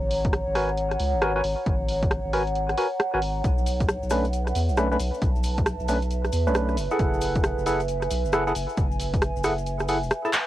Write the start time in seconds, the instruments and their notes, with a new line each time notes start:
Already playing: sub bass G#1, ambient pad C#5 F#5 A#5
0.11 open hi-hat
0.25 kick, closed hi-hat
0.33 cross-stick, closed hi-hat
0.47 sub bass G#1
0.55 synth stab F#4 A#4 B4 G#5, cross-stick, open hi-hat
0.77 closed hi-hat
0.91 cross-stick, closed hi-hat
1.00 sub bass C#2, open hi-hat
1.14 sub bass G#1
1.22 synth stab F#4 A#4 B4 G#5, cross-stick, closed hi-hat
1.36 synth stab F#4 A#4 B4 G#5
1.44 sub bass G#1, open hi-hat
1.66 sub bass G#1, kick, closed hi-hat
1.89 open hi-hat
2.03 kick, closed hi-hat
2.11 cross-stick, closed hi-hat
2.25 sub bass G#1
2.33 synth stab F#4 A#4 B4 G#5, open hi-hat
2.47 closed hi-hat
2.55 closed hi-hat
2.69 cross-stick, closed hi-hat
2.77 synth stab F#4 A#4 B4 G#5, open hi-hat
3.00 cross-stick, closed hi-hat
3.14 sub bass G#1, synth stab F#4 A#4 B4 G#5, cross-stick
3.22 open hi-hat
3.44 sub bass B1, ambient pad B4, kick, closed hi-hat, maracas
3.58 maracas
3.66 open hi-hat, maracas
3.80 ambient pad E5, kick, closed hi-hat, maracas
3.89 cross-stick, closed hi-hat, maracas
4.03 sub bass B1, maracas
4.10 synth stab A3 C#4 D4 B4, cross-stick, open hi-hat, maracas
4.25 closed hi-hat, maracas
4.33 closed hi-hat, maracas
4.47 cross-stick, closed hi-hat, maracas
4.55 sub bass E2, open hi-hat, maracas
4.69 sub bass B1, ambient pad A5, maracas
4.77 synth stab A3 C#4 D4 B4, cross-stick, closed hi-hat, maracas
4.92 synth stab A3 C#4 D4 B4, maracas
5.00 sub bass B1, open hi-hat, maracas
5.14 maracas
5.22 sub bass B1, kick, closed hi-hat, maracas
5.36 maracas
5.43 open hi-hat, maracas
5.58 kick, closed hi-hat, maracas
5.66 cross-stick, closed hi-hat, maracas
5.80 sub bass B1, maracas
5.88 synth stab A3 C#4 D4 B4, open hi-hat, maracas
6.02 closed hi-hat, maracas
6.11 closed hi-hat, maracas
6.25 cross-stick, closed hi-hat, maracas
6.32 sub bass E2, open hi-hat, maracas
6.47 sub bass B1, synth stab A3 C#4 D4 B4, maracas
6.55 cross-stick, closed hi-hat, maracas
6.69 cross-stick, maracas
6.77 sub bass F#1, open hi-hat, maracas
6.91 synth stab E4 G#4 A4 F#5, maracas
6.99 sub bass F#1, ambient pad G#5, kick, closed hi-hat, maracas
7.14 maracas
7.21 open hi-hat, maracas
7.35 kick, closed hi-hat, maracas
7.44 cross-stick, closed hi-hat, maracas
7.58 sub bass F#1, maracas
7.66 synth stab E4 G#4 A4 F#5, open hi-hat, maracas
7.80 closed hi-hat, maracas
7.88 closed hi-hat, maracas
8.02 cross-stick, closed hi-hat, maracas
8.11 sub bass B1, open hi-hat, maracas
8.25 sub bass F#1, maracas
8.33 synth stab E4 G#4 A4 F#5, cross-stick, closed hi-hat, maracas
8.47 synth stab E4 G#4 A4 F#5, maracas
8.55 sub bass F#1, open hi-hat, maracas
8.69 maracas
8.77 sub bass F#1, kick, closed hi-hat, maracas
8.91 maracas
9.00 open hi-hat, maracas
9.14 kick, closed hi-hat, maracas
9.22 cross-stick, closed hi-hat, maracas
9.36 sub bass F#1, maracas
9.44 synth stab E4 G#4 A4 F#5, cross-stick, open hi-hat, maracas
9.58 closed hi-hat, maracas
9.66 closed hi-hat, maracas
9.79 cross-stick, closed hi-hat, maracas
9.88 synth stab E4 G#4 A4 F#5, open hi-hat, maracas
10.03 sub bass E1, maracas
10.10 cross-stick, closed hi-hat, maracas
10.25 synth stab E4 G#4 A4 A5, cross-stick, maracas
10.33 clap, open hi-hat, maracas